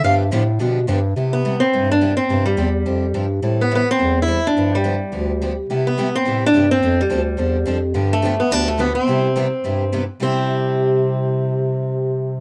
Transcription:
0.03 bass clarinet G2, steel-string acoustic guitar D3 F3 B3 D4 G4 F5
0.31 bass clarinet A2, steel-string acoustic guitar D3 F3 B3 D4 G4
0.59 bass clarinet B2, steel-string acoustic guitar D3 F3 B3 D4 G4
0.88 bass clarinet G2, steel-string acoustic guitar D3 F3 B3 D4 G4
1.16 bass clarinet C3, steel-string acoustic guitar C3 G3 B3 E4 G4
1.33 steel-string acoustic guitar B3
1.45 steel-string acoustic guitar C3 G3 B3 E4 G4
1.60 steel-string acoustic guitar C4
1.73 bass clarinet G2, steel-string acoustic guitar C3 G3 B3 E4 G4
1.91 steel-string acoustic guitar D4
2.01 steel-string acoustic guitar C3 G3 B3 E4 G4
2.17 steel-string acoustic guitar C4
2.29 bass clarinet G2, steel-string acoustic guitar C3 F3 C4 D4 G4
2.46 steel-string acoustic guitar G3
2.57 bass clarinet E2, steel-string acoustic guitar C3 F3 C4 D4 G4
2.86 bass clarinet F2, steel-string acoustic guitar C3 F3 C4 D4 G4
3.14 bass clarinet G2, steel-string acoustic guitar C3 F3 C4 D4 G4
3.42 bass clarinet A2, steel-string acoustic guitar E3 G3 C4 E4 A4
3.61 steel-string acoustic guitar B3
3.71 steel-string acoustic guitar E3 G3 C4 E4 A4
3.75 steel-string acoustic guitar B3
3.91 steel-string acoustic guitar C4
3.98 bass clarinet E2, steel-string acoustic guitar E3 G3 C4 E4 A4
4.22 steel-string acoustic guitar E4
4.28 steel-string acoustic guitar E3 G3 C4 E4 A4
4.47 steel-string acoustic guitar D4
4.56 bass clarinet G2, steel-string acoustic guitar D3 F3 B3 D4 G4
4.75 steel-string acoustic guitar G3
4.84 steel-string acoustic guitar D3 F3 B3 D4 G4
5.12 bass clarinet D2, steel-string acoustic guitar D3 F3 B3 D4 G4
5.42 steel-string acoustic guitar D3 F3 B3 D4 G4
5.69 bass clarinet C3, steel-string acoustic guitar C3 G3 B3 E4 G4
5.87 steel-string acoustic guitar B3
5.97 steel-string acoustic guitar C3 G3 B3 E4 G4
6.15 steel-string acoustic guitar C4
6.25 bass clarinet A2, steel-string acoustic guitar C3 G3 B3 E4 G4
6.46 steel-string acoustic guitar D4
6.53 bass clarinet G2, steel-string acoustic guitar C3 G3 B3 E4 G4
6.71 steel-string acoustic guitar C4
6.83 bass clarinet F2, steel-string acoustic guitar F3 C4 D4 A4
7.01 steel-string acoustic guitar G3
7.10 bass clarinet D2, steel-string acoustic guitar F3 C4 D4 A4
7.37 bass clarinet E2, steel-string acoustic guitar F3 C4 D4 A4
7.65 bass clarinet F2, steel-string acoustic guitar F3 C4 D4 A4
7.94 bass clarinet G2, steel-string acoustic guitar D3 F3 B3 D4 G4
8.13 steel-string acoustic guitar A3
8.22 steel-string acoustic guitar D3 F3 B3 D4 G4
8.40 steel-string acoustic guitar B3
8.50 bass clarinet D2, steel-string acoustic guitar D3 F3 B3 D4 G4
8.68 steel-string acoustic guitar A3
8.79 steel-string acoustic guitar D3 F3 B3 D4 G4
8.95 steel-string acoustic guitar C4
9.07 bass clarinet C3, steel-string acoustic guitar C3 G3 B3 E4 G4
9.36 steel-string acoustic guitar C3 G3 B3 E4 G4
9.63 bass clarinet G2, steel-string acoustic guitar C3 G3 B3 E4 G4
9.93 steel-string acoustic guitar C3 G3 B3 E4 G4
10.20 bass clarinet C3, steel-string acoustic guitar C3 G3 C4 E4 G4

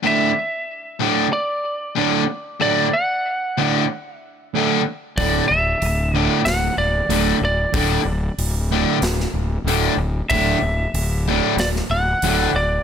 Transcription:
0.03 distorted electric guitar D2 A2 D3
0.07 lead electric guitar E5
0.99 distorted electric guitar D2 A2 D3
1.33 lead electric guitar D5
1.95 distorted electric guitar D2 A2 D3
2.60 distorted electric guitar D2 A2 D3, lead electric guitar D5
2.93 lead electric guitar F#5
3.57 distorted electric guitar D2 A2 D3
4.16 lead electric guitar E5
4.55 distorted electric guitar D2 A2 D3
5.17 fingered electric bass D1, distorted electric guitar D2 A2 D3, lead electric guitar D5, kick, open hi-hat
5.48 fingered electric bass D1, lead electric guitar E5
5.82 fingered electric bass D1, open hi-hat
6.15 distorted electric guitar D2 A2 D3
6.19 lead electric guitar D5
6.45 fingered electric bass D1, lead electric guitar F#5, snare, open hi-hat
6.77 fingered electric bass D1, lead electric guitar D5
7.09 fingered electric bass D1, distorted electric guitar D2 A2 D3, open hi-hat
7.41 fingered electric bass D1, lead electric guitar D5
7.74 fingered electric bass D1, distorted electric guitar D2 A2 D3, kick, open hi-hat
8.05 fingered electric bass D1
8.38 fingered electric bass D1, open hi-hat
8.72 distorted electric guitar D2 A2 D3
9.02 fingered electric bass D1, snare, open hi-hat
9.20 snare
9.34 fingered electric bass D1
9.64 fingered electric bass D1, distorted electric guitar D2 A2, open hi-hat
9.69 distorted electric guitar D3
9.97 fingered electric bass D1
10.30 fingered electric bass D1, distorted electric guitar D2 A2 D3, lead electric guitar E5, kick, open hi-hat
10.62 fingered electric bass D1
10.94 fingered electric bass D1, open hi-hat
11.28 distorted electric guitar D2 A2 D3
11.57 fingered electric bass D1, lead electric guitar D5, snare, open hi-hat
11.76 snare
11.90 fingered electric bass D1, lead electric guitar F#5
12.22 fingered electric bass D1, distorted electric guitar D2 A2 D3, open hi-hat
12.54 fingered electric bass D1, lead electric guitar D5

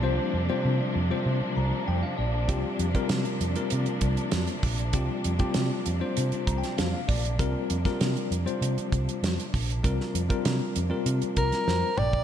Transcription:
Already playing: string section C3 F3 A#3 D4
0.02 fingered electric bass C2, tine electric piano G3 C4 F4 C5
0.34 fingered electric bass F2
0.49 tine electric piano G3 C4 F4 C5
0.65 fingered electric bass C3
0.96 fingered electric bass F2
1.10 tine electric piano G3 C4 F4 C5
1.26 fingered electric bass C3
1.41 muted fingered electric bass stroke
1.57 fingered electric bass C2, tine electric piano A#5
1.88 fingered electric bass F2, tine electric piano G5
2.03 tine electric piano F5
2.18 fingered electric bass A#1, tine electric piano D5
2.48 fingered electric bass C2, tine electric piano G3 C4 F4 G4, kick, closed hi-hat
2.79 fingered electric bass F2, closed hi-hat
2.95 tine electric piano G3 C4 F4 A#4, kick, closed hi-hat
3.09 fingered electric bass C3, snare, closed hi-hat
3.25 closed hi-hat
3.41 fingered electric bass F2, closed hi-hat
3.55 tine electric piano G3 C4 F4 A#4, closed hi-hat
3.70 fingered electric bass C3, closed hi-hat
3.86 muted fingered electric bass stroke, closed hi-hat
4.01 fingered electric bass C2, kick, closed hi-hat
4.17 closed hi-hat
4.32 fingered electric bass F2, snare, closed hi-hat
4.47 closed hi-hat
4.63 fingered electric bass A#1, kick, open hi-hat
4.78 closed hi-hat
4.93 fingered electric bass C2, tine electric piano G3 C4 F4 G4, kick, closed hi-hat
5.24 fingered electric bass F2, closed hi-hat
5.39 tine electric piano G3 C4 F4 G4, kick, closed hi-hat
5.54 fingered electric bass C3, snare, closed hi-hat
5.86 fingered electric bass F2, closed hi-hat
6.00 tine electric piano G3 C4 F4 C5
6.17 fingered electric bass C3, closed hi-hat
6.32 muted fingered electric bass stroke, closed hi-hat
6.47 fingered electric bass C2, tine electric piano A#5, kick, closed hi-hat
6.58 tine electric piano G5
6.63 snare, closed hi-hat
6.78 fingered electric bass F2, tine electric piano F5, snare, closed hi-hat
6.94 tine electric piano F5
7.08 fingered electric bass A#1, tine electric piano D5, kick, open hi-hat
7.25 closed hi-hat
7.39 fingered electric bass C2, tine electric piano G3 C4 F4 A#4, kick, closed hi-hat
7.70 fingered electric bass F2, closed hi-hat
7.85 tine electric piano G3 C4 F4 A#4, kick, snare, closed hi-hat
8.01 fingered electric bass C3, snare, closed hi-hat
8.17 closed hi-hat
8.31 fingered electric bass F2, closed hi-hat
8.46 tine electric piano G3 C4 F4 C5, closed hi-hat
8.61 fingered electric bass C3, closed hi-hat
8.78 muted fingered electric bass stroke, closed hi-hat
8.92 fingered electric bass C2, kick, closed hi-hat
9.09 closed hi-hat
9.23 fingered electric bass F2, snare, closed hi-hat
9.40 closed hi-hat
9.54 fingered electric bass A#1, kick, open hi-hat
9.70 closed hi-hat
9.83 fingered electric bass C2, tine electric piano G3 C4 F4 A#4, kick, closed hi-hat
10.00 snare
10.15 fingered electric bass F2, closed hi-hat
10.29 tine electric piano G3 C4 F4 A#4, kick, closed hi-hat
10.45 fingered electric bass C3, snare, closed hi-hat
10.76 fingered electric bass F2, closed hi-hat
10.90 tine electric piano G3 C4 F4 A#4
11.06 fingered electric bass C3, closed hi-hat
11.22 muted fingered electric bass stroke, closed hi-hat
11.36 fingered electric bass C2, soprano saxophone A#4, kick, closed hi-hat
11.52 snare, closed hi-hat
11.68 fingered electric bass F2, tine electric piano C5, snare
11.97 fingered electric bass A#1, soprano saxophone D5, tine electric piano G5, mid tom
12.13 kick

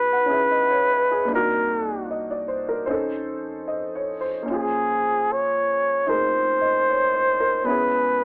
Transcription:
Already playing: upright bass B1, upright piano G#3 B3 D#4 F#4, flugelhorn B4
0.13 upright piano F#5
0.26 upright piano C#4 E4 G#4
0.33 upright piano E5
0.51 upright piano D#5
0.70 upright piano C#5
0.93 upright piano B4
1.11 upright piano G#4
1.25 upright bass C2, upright piano A#3 D4
1.32 upright piano D#4 F#4, flugelhorn A#4
2.11 upright piano D#5
2.31 upright piano D5
2.48 upright piano C5
2.69 upright piano A#4
2.86 upright bass F2, upright piano C#4 D#4 C5
2.91 upright piano A4
3.68 upright piano D#5
3.95 upright piano C#5
4.21 upright piano C5
4.43 upright piano A#3 C#4
4.48 upright bass A#1, upright piano F4, flugelhorn G#4
4.53 upright piano G#4
5.32 flugelhorn C#5
6.06 upright bass F1, upright piano D#4 G#4 A#4, flugelhorn C5
6.61 upright piano D#5
6.89 upright piano C#5
7.14 upright piano C5
7.40 upright piano A#4
7.64 upright bass C#2, upright piano B3 C#4 E4, flugelhorn B4
7.69 upright piano G#4

